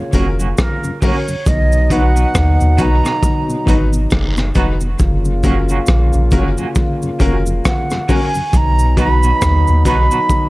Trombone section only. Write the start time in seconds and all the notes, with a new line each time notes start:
Already playing: C#3 A#3 F4
1.46 B2 F#3 D#4
5.00 C#3 A#3 F4
8.53 F#3 B3 D#4